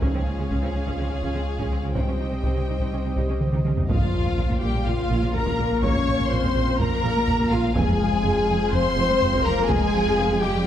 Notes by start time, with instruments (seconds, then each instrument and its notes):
Already playing: analog synth pad G#3
0.02 sub bass C#2, cello section C#3, viola section C#4, analog synth pad C#4 F4 C#5, violin section G#4 F5, taiko
0.14 cello section C#3, viola section C4
0.26 cello section C#3, viola section C#4
0.39 cello section C#3, viola section G#3
0.51 cello section C#3, viola section C#4, taiko
0.62 cello section C#3, viola section C4
0.75 cello section C#3, viola section C#4
0.86 cello section C#3, viola section C#4, taiko
0.99 cello section C#3, viola section C4
1.10 cello section C#3, viola section C#4
1.22 cello section C#3, viola section C#4, taiko
1.34 cello section C#3, viola section C4
1.59 cello section C#3, viola section C#4, taiko
1.71 cello section C#3, viola section C4
1.83 cello section C#3, viola section C#4
1.95 sub bass C2, cello section C3, analog synth pad G3 C4 G4 D#5, viola section D#4, violin section C5 G5, taiko
2.07 cello section C3, viola section C#4
2.19 cello section C3, viola section D#4
2.31 cello section C3, viola section C4
2.43 cello section C3, viola section D#4, taiko
2.56 cello section C3, viola section C#4
2.68 cello section C3, viola section D#4
2.80 cello section C3, viola section D#4, taiko
2.92 cello section C3, viola section C#4
3.04 cello section C3, viola section D#4
3.16 cello section C3, viola section D#4, taiko
3.28 cello section C3, viola section C#4
3.41 taiko mid
3.52 cello section C3, viola section D#4, taiko mid
3.65 cello section C3, viola section C#4, taiko mid
3.77 cello section C3, viola section D#4, taiko low
3.88 sub bass A#1, double bass section A#1, cello section A#2, analog synth pad C#3 A#3 F4 F5, french horn section F3, violin section F4 F5, viola section F4, taiko, sub drop
4.01 cello section A#2, taiko low
4.13 double bass section A#1, cello section A#2
4.25 cello section A#2, taiko low
4.37 double bass section A#1, cello section A#2
4.50 cello section A#2, taiko low
4.61 double bass section A#1, cello section A#2, french horn section G3, violin section G4 G5, viola section G4
4.74 cello section A#2
4.86 double bass section A#1, cello section A#2, french horn section F3, violin section F4 F5, viola section F4, taiko low
4.98 cello section A#2
5.10 double bass section A#1, cello section A#2
5.22 cello section A#2
5.34 double bass section A#1, cello section A#2, french horn section A#3, violin section A#4 A#5, viola section A#4, taiko low
5.46 cello section A#2, taiko
5.58 double bass section A#1, cello section A#2
5.70 cello section A#2
5.82 double bass section A#1, cello section A#2, french horn section C#4, violin section C#5 C#6, viola section C#5, taiko
5.95 cello section A#2, taiko low
6.06 double bass section A#1, cello section A#2
6.19 cello section A#2, taiko low
6.30 double bass section A#1, cello section A#2, french horn section C4, violin section C5 C6, viola section C5
6.43 cello section A#2, taiko low
6.55 double bass section A#1, cello section A#2
6.68 cello section A#2
6.79 double bass section A#1, cello section A#2, french horn section A#3, violin section A#4 A#5, viola section A#4, taiko low
6.92 cello section A#2
7.03 double bass section A#1, cello section A#2
7.16 cello section A#2
7.27 double bass section A#1, cello section A#2, taiko low
7.39 cello section A#2, taiko
7.51 double bass section A#1, cello section A#2, french horn section F3, violin section F4 F5, viola section F4
7.64 cello section A#2
7.75 double bass section F1, sub bass F1, cello section F2, analog synth pad G#3 C4 F4 F5, french horn section G#3, violin section G#4 G#5, viola section G#4, taiko
7.88 cello section F2, taiko low
8.00 double bass section F1, cello section F2
8.12 cello section F2, taiko low
8.24 double bass section F1, cello section F2
8.37 cello section F2, taiko low
8.49 double bass section F1, cello section F2
8.61 cello section F2
8.72 double bass section F1, cello section F2, french horn section C4, violin section C5 C6, viola section C5, taiko low
8.84 cello section F2
8.97 double bass section F1, cello section F2
9.09 cello section F2
9.21 double bass section F1, cello section F2, taiko low
9.33 cello section F2, taiko
9.44 double bass section F1, cello section F2, french horn section A#3, violin section A#4 A#5, viola section A#4
9.57 cello section F2
9.68 double bass section F1, cello section F2, french horn section G#3, violin section G#4 G#5, viola section G#4, taiko
9.81 cello section F2, taiko low
9.94 double bass section F1, cello section F2
10.05 cello section F2, taiko low
10.18 double bass section F1, cello section F2
10.30 cello section F2, taiko low
10.41 double bass section F1, cello section F2, french horn section G3, viola section G4, violin section G4 G5
10.54 cello section F2